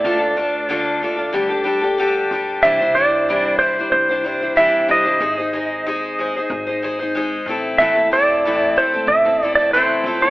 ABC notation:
X:1
M:4/4
L:1/16
Q:1/4=93
K:C
V:1 name="Electric slide guitar"
d8- d2 z6 | e2 d4 c2 c4 e2 _e2- | _e8- e2 z6 | e2 d4 c2 e3 d c3 d |]
V:2 name="Steel-string acoustic guitar"
[D,A,DFA] [DFA] [A,DFA]2 [D,A,DFA]2 [A,DFA] [DFA] [D,G,DGA] [DGA] [G,DGA] [DGA] [D,G,DGA]2 [G,DGA]2 | [C,E,G,DEc] [G,DEc] [G,DEc]2 [C,E,G,DEc]2 [G,DEc] [G,DEc]2 [G,DEc] [G,DEc] [G,DEc] [C,E,G,DEc]2 [G,DEc] [G,DEc] | [_A,_E_Ac] [EAc] [A,EAc]2 [A,EAc]2 [A,EAc] [EAc]2 [EAc] [A,EAc] [EAc] [A,EAc]2 [=A,C=E=A]2 | [A,,E,A,CEA] [A,CEA] [A,CEA]2 [A,,E,A,CEA]2 [A,CEA] [A,CEA]2 [A,CEA] [A,CEA] [A,CEA] [A,,E,A,CEA]2 [A,CEA] [A,CEA] |]
V:3 name="Upright bass" clef=bass
D,,8 D,,6 D,,2 | C,,8 C,,6 C,,2 | _A,,,8 A,,,6 =A,,,2 | A,,,8 A,,,6 _D,,2 |]